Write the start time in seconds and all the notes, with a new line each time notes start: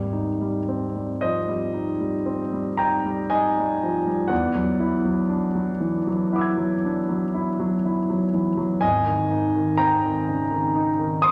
Already playing: G#1 G3
0.13 D#4
0.41 G3
0.68 C4
0.96 G3
1.21 F3 C5 D#5
1.48 G3
1.74 D#4
2.00 G3
2.26 C4
2.53 G3
2.77 D#4 G5 A#5
3.05 G3
3.30 D#4 D#5 G#5
3.59 G3
3.83 F3
4.06 G3
4.28 E2 D5 F#5
4.55 F#3
4.80 E4
5.05 F#3
5.29 D4
5.55 F#3
5.80 E3
6.07 F#3
6.32 E4 F#5 D6
6.38 E6 G#6
6.57 F#3
6.84 D4
7.09 F#3
7.34 E4
7.60 F#3
7.85 E4
8.10 F#3
8.33 E3
8.57 F#3
8.81 G#1 D#5 G#5
9.06 D#3
9.31 D#4
9.56 D#3
9.78 C4 G5 A#5
10.04 D#3
10.28 C#3
10.51 D#3
10.76 D#4
10.99 D#3
11.22 C4 C6 D#6